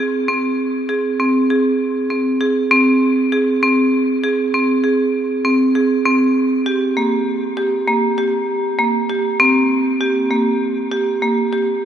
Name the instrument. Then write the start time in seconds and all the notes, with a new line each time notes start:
marimba
0.00 G#4
0.28 C4
0.89 G#4
1.20 C4
1.50 G#4
2.10 C4
2.41 G#4
2.71 C4
3.32 G#4
3.63 C4
4.24 G#4
4.54 C4
4.84 G#4
5.45 C4
5.75 G#4
6.05 C4
6.66 G4
6.97 A#3
7.57 G4
7.88 A#3
8.18 G4
8.79 A#3
9.10 G4
9.40 C4
10.01 G4
10.31 A#3
10.92 G4
11.22 A#3
11.53 G4